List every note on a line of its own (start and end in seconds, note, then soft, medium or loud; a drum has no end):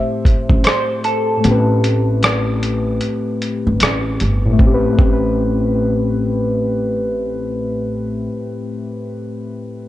0.00 1.36 A2 medium
0.00 1.38 A3 medium
0.00 1.39 C4 medium
0.00 1.41 G4 medium
0.00 1.43 C5 medium
0.00 0.64 E5 loud
0.25 kick medium
0.25 closed hi-hat medium
0.50 0.63 A1 medium
0.50 kick medium
0.64 1.05 C5 medium
0.64 cross-stick loud
0.64 closed hi-hat loud
1.04 3.77 A4 medium
1.04 closed hi-hat medium
1.37 4.44 A2 medium
1.37 4.51 A3 medium
1.44 2.98 A1 loud
1.44 1.52 B3 soft
1.44 4.57 G4 medium
1.44 closed hi-hat medium
1.50 4.58 C4 medium
1.50 4.59 B4 medium
1.84 closed hi-hat medium
2.23 cross-stick loud
2.23 closed hi-hat medium
2.63 closed hi-hat medium
3.01 closed hi-hat medium
3.42 closed hi-hat medium
3.67 3.79 G1 medium
3.80 4.16 A1 medium
3.80 cross-stick loud
3.80 closed hi-hat loud
4.20 4.56 G1 medium
4.20 closed hi-hat medium
4.45 4.77 A2 medium
4.53 4.81 A3 medium
4.59 4.85 A1 medium
4.59 4.85 C4 medium
4.59 kick loud
4.66 4.89 G4 medium
4.74 4.93 B4 medium
4.85 8.12 A2 medium
4.92 8.19 A3 medium
4.99 8.26 A1 medium
4.99 8.26 C4 medium
4.99 kick loud
5.06 8.33 G4 medium
5.13 8.40 B4 medium